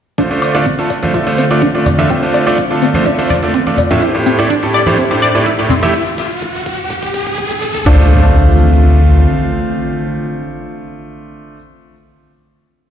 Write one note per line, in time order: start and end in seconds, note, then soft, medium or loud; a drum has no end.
0.18 0.49 D2 loud
0.18 3.98 D3 medium
0.18 0.29 D3 medium
0.18 5.90 A3 medium
0.18 0.29 A3 medium
0.18 5.90 C4 medium
0.18 0.23 D4 loud
0.18 0.29 D4 medium
0.18 3.98 F4 medium
0.18 0.29 F4 medium
0.18 0.29 C5 medium
0.18 kick loud
0.18 closed hi-hat medium
0.18 riser medium
0.18 shaker soft
0.31 0.52 D3 medium
0.31 0.52 A3 medium
0.31 0.52 D4 medium
0.31 0.52 F4 medium
0.31 0.52 C5 medium
0.31 shaker soft
0.42 0.50 D5 loud
0.42 open hi-hat loud
0.42 shaker medium
0.55 0.85 D1 loud
0.55 0.64 D3 medium
0.55 0.64 A3 medium
0.55 0.64 D4 medium
0.55 0.64 F4 medium
0.55 0.64 D5 loud
0.55 closed hi-hat medium
0.55 shaker soft
0.66 0.71 C4 medium
0.66 kick loud
0.66 closed hi-hat medium
0.66 shaker soft
0.79 0.95 D3 medium
0.79 0.95 A3 medium
0.79 0.95 D4 medium
0.79 0.95 F4 medium
0.79 0.95 A4 medium
0.79 open hi-hat medium
0.90 1.08 D1 medium
0.90 0.95 D5 medium
0.90 kick medium
0.90 open hi-hat loud
0.90 shaker medium
1.03 1.11 D3 medium
1.03 1.11 A3 medium
1.03 1.11 D4 medium
1.03 1.11 F4 medium
1.03 1.11 C5 medium
1.03 closed hi-hat medium
1.03 high conga medium
1.03 shaker soft
1.14 1.23 D2 medium
1.14 1.24 D3 medium
1.14 1.24 A3 medium
1.14 1.24 D4 medium
1.14 1.19 F4 medium
1.14 1.24 F4 medium
1.14 1.24 E5 medium
1.14 kick loud
1.14 closed hi-hat medium
1.14 shaker soft
1.27 1.43 D3 medium
1.27 1.43 A3 medium
1.27 1.43 D4 medium
1.27 1.43 F4 medium
1.27 1.43 C5 loud
1.27 shaker soft
1.38 1.69 D2 medium
1.38 1.41 C4 medium
1.38 open hi-hat loud
1.38 shaker medium
1.51 1.67 D3 medium
1.51 1.67 A3 medium
1.51 1.67 D4 medium
1.51 1.67 F4 medium
1.51 1.67 D5 medium
1.51 closed hi-hat medium
1.51 shaker soft
1.62 1.67 D4 loud
1.62 kick loud
1.62 closed hi-hat medium
1.62 shaker soft
1.75 2.05 D1 medium
1.75 1.84 D3 medium
1.75 1.84 A3 medium
1.75 1.84 D4 medium
1.75 1.84 F4 medium
1.75 1.84 D5 medium
1.86 1.94 D5 loud
1.86 open hi-hat loud
1.86 low conga medium
1.86 shaker medium
1.98 2.08 D3 medium
1.98 2.08 A3 medium
1.98 2.08 D4 medium
1.98 2.08 F4 medium
1.98 2.08 E5 medium
1.98 closed hi-hat medium
1.98 high conga medium
1.98 shaker soft
2.10 2.41 D2 medium
2.10 2.21 D3 medium
2.10 2.21 A3 medium
2.10 2.15 C4 medium
2.10 2.21 D4 medium
2.10 2.21 F4 medium
2.10 2.21 C5 medium
2.10 kick loud
2.10 closed hi-hat medium
2.10 shaker soft
2.23 2.44 D3 medium
2.23 2.44 A3 medium
2.23 2.44 D4 medium
2.23 2.44 F4 medium
2.23 2.44 C5 medium
2.23 shaker soft
2.34 2.39 D5 medium
2.34 open hi-hat loud
2.34 shaker medium
2.47 2.55 D2 medium
2.47 2.56 D3 loud
2.47 2.56 A3 medium
2.47 2.56 D4 medium
2.47 2.56 F4 medium
2.47 2.56 D5 loud
2.47 closed hi-hat medium
2.47 shaker soft
2.58 2.63 F4 medium
2.58 kick loud
2.58 closed hi-hat medium
2.58 shaker soft
2.71 2.87 D3 medium
2.71 2.87 A3 medium
2.71 2.87 D4 medium
2.71 2.87 F4 medium
2.71 2.87 A4 medium
2.82 3.00 G2 medium
2.82 2.85 C4 medium
2.82 open hi-hat loud
2.82 shaker medium
2.94 3.03 D3 medium
2.94 3.03 A3 medium
2.94 3.03 D4 medium
2.94 3.03 F4 medium
2.94 3.03 C5 medium
2.94 closed hi-hat medium
2.94 high conga loud
2.94 shaker soft
3.06 3.15 D2 medium
3.06 3.16 D3 medium
3.06 3.16 A3 medium
3.06 3.16 D4 medium
3.06 3.11 D4 loud
3.06 3.16 F4 medium
3.06 3.16 E5 medium
3.06 kick loud
3.06 closed hi-hat medium
3.06 shaker soft
3.19 3.35 D3 medium
3.19 3.35 A3 medium
3.19 3.35 D4 medium
3.19 3.35 F4 medium
3.19 3.35 C5 loud
3.19 shaker soft
3.30 3.39 D2 medium
3.30 3.38 D5 loud
3.30 kick medium
3.30 open hi-hat loud
3.30 high conga medium
3.30 low conga medium
3.30 shaker medium
3.43 3.59 D3 medium
3.43 3.59 A3 medium
3.43 3.59 D4 medium
3.43 3.59 F4 medium
3.43 3.59 D5 medium
3.43 closed hi-hat medium
3.43 shaker soft
3.54 3.59 C4 medium
3.54 kick loud
3.54 closed hi-hat medium
3.54 shaker soft
3.67 3.97 D2 loud
3.67 3.76 D3 medium
3.67 3.76 A3 medium
3.67 3.76 D4 medium
3.67 3.76 F4 medium
3.67 3.76 D5 medium
3.67 high conga medium
3.77 3.83 D5 medium
3.77 open hi-hat loud
3.77 low conga medium
3.77 shaker medium
3.91 4.00 A2 medium
3.91 4.00 A3 medium
3.91 4.00 D4 medium
3.91 4.00 F4 medium
3.91 4.00 E5 medium
3.91 closed hi-hat medium
3.91 high conga medium
3.91 shaker soft
4.02 4.33 A1 loud
4.02 4.13 A2 medium
4.02 4.13 A3 medium
4.02 4.07 E4 medium
4.02 4.13 E4 medium
4.02 5.92 G4 medium
4.02 4.13 G4 medium
4.02 4.13 C5 medium
4.02 kick loud
4.02 closed hi-hat medium
4.02 shaker soft
4.15 4.36 A2 medium
4.15 4.36 A3 medium
4.15 4.36 E4 medium
4.15 4.36 G4 medium
4.15 4.36 C5 loud
4.15 shaker soft
4.26 4.29 C4 medium
4.26 open hi-hat loud
4.26 shaker medium
4.39 4.69 A2 loud
4.39 4.48 A2 loud
4.39 4.48 A3 medium
4.39 4.48 E4 medium
4.39 4.48 G4 medium
4.39 4.48 D5 loud
4.39 closed hi-hat medium
4.39 shaker soft
4.50 4.55 D4 loud
4.50 kick loud
4.50 closed hi-hat medium
4.50 shaker soft
4.63 4.79 A2 medium
4.63 4.79 A3 medium
4.63 4.79 E4 medium
4.63 4.79 G4 medium
4.63 4.79 A4 medium
4.63 open hi-hat medium
4.74 4.92 A2 medium
4.74 4.82 D5 loud
4.74 open hi-hat loud
4.74 shaker medium
4.86 4.95 A2 medium
4.86 4.95 A3 medium
4.86 4.95 E4 medium
4.86 4.95 G4 medium
4.86 4.95 C5 medium
4.86 closed hi-hat medium
4.86 high conga loud
4.86 shaker soft
4.98 5.08 A2 medium
4.98 5.08 A3 medium
4.98 5.03 C4 medium
4.98 5.08 E4 medium
4.98 5.08 G4 medium
4.98 5.08 E5 medium
4.98 kick loud
4.98 closed hi-hat medium
4.98 shaker soft
5.11 5.27 A2 medium
5.11 5.27 A3 medium
5.11 5.27 E4 medium
5.11 5.27 G4 medium
5.11 5.27 C5 loud
5.11 shaker soft
5.22 5.53 A1 medium
5.22 5.27 D5 medium
5.22 open hi-hat loud
5.22 shaker medium
5.35 5.51 A2 medium
5.35 5.51 A3 medium
5.35 5.51 E4 medium
5.35 5.51 G4 medium
5.35 5.51 D5 medium
5.35 closed hi-hat medium
5.35 shaker soft
5.46 5.51 E4 medium
5.46 kick loud
5.46 closed hi-hat medium
5.46 shaker soft
5.59 5.89 A2 medium
5.59 5.68 A2 medium
5.59 5.68 A3 medium
5.59 5.68 E4 medium
5.59 5.68 G4 medium
5.59 5.68 D5 medium
5.69 5.73 C4 medium
5.69 open hi-hat loud
5.69 low conga loud
5.69 shaker medium
5.83 5.92 A3 medium
5.83 5.92 E4 medium
5.83 5.92 G4 medium
5.83 5.92 E5 medium
5.83 closed hi-hat medium
5.83 high conga medium
5.83 shaker soft
5.94 kick loud
5.94 closed hi-hat medium
5.94 shaker soft
6.07 shaker soft
6.18 kick loud
6.18 open hi-hat loud
6.18 shaker medium
6.31 closed hi-hat medium
6.31 shaker soft
6.42 kick loud
6.42 closed hi-hat soft
6.42 shaker soft
6.55 shaker soft
6.66 kick loud
6.66 open hi-hat loud
6.66 shaker medium
6.79 closed hi-hat medium
6.79 shaker soft
6.90 kick loud
6.90 closed hi-hat medium
6.90 shaker soft
7.03 kick medium
7.03 shaker soft
7.14 kick loud
7.14 open hi-hat loud
7.14 shaker medium
7.27 kick medium
7.27 closed hi-hat medium
7.27 shaker soft
7.38 kick loud
7.38 closed hi-hat medium
7.38 shaker soft
7.51 kick medium
7.62 kick loud
7.62 open hi-hat loud
7.62 shaker medium
7.75 kick medium
7.75 closed hi-hat medium
7.75 shaker soft
7.86 9.26 D2 loud
7.86 11.56 D3 medium
7.86 11.56 A3 medium
7.86 11.56 C4 medium
7.86 8.08 D4 loud
7.86 11.56 D4 medium
7.86 11.56 F4 medium
7.86 11.56 F4 loud
7.86 11.56 C5 medium
7.86 kick loud
7.86 crash medium
7.86 impact medium